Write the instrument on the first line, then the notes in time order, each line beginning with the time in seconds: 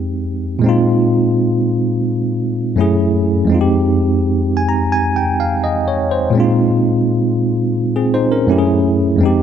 tine electric piano
Already playing: F2 G#3 C4 D#4 G4
0.59 A#2 G#3
0.64 C4 D#4
0.69 F4
2.76 F#2 A3 C#4 E4
2.81 G#4
3.45 F2 G#3
3.50 C4 D#4
3.54 F4
3.61 G4
4.57 G#5
4.69 A#5
4.92 G#5
5.16 G5
5.40 F5
5.64 D#5
5.88 C#5
6.11 C5
6.30 A#2 G#3
6.35 C4 D4
6.40 F4
6.44 D#4
7.96 C4 G#4
8.14 D#4 C5
8.32 C#4 A#4
8.47 F#2 A3 C#4 E4
8.52 G4
8.58 G#4
9.16 F2 G#3
9.21 C4 D#4
9.26 G4